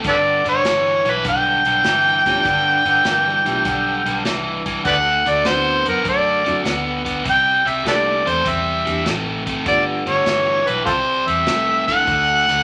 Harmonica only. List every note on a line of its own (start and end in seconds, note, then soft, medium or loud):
0.08 0.16 A4 medium
0.08 0.17 B4 medium
0.08 0.45 D5 loud
0.49 1.12 C#5 medium
1.10 1.27 B4 medium
1.29 4.23 G5 loud
4.87 4.95 B4 medium
4.87 4.95 D5 medium
4.87 5.30 F#5 loud
5.28 5.49 D5 medium
5.47 5.87 C5 medium
5.88 6.05 A#4 medium
6.09 6.63 D5 medium
7.30 7.70 G5 loud
7.69 7.87 E5 loud
7.88 7.97 A4 medium
7.88 7.95 B4 medium
7.88 8.30 D5 medium
8.28 8.50 C5 medium
8.48 9.08 E5 medium
9.68 9.84 D5 loud
10.09 10.69 C#5 medium
10.67 10.85 B4 medium
10.85 10.92 F4 medium
10.85 10.92 A4 medium
10.85 11.29 C5 medium
11.27 11.87 E5 loud
11.87 12.63 F#5 loud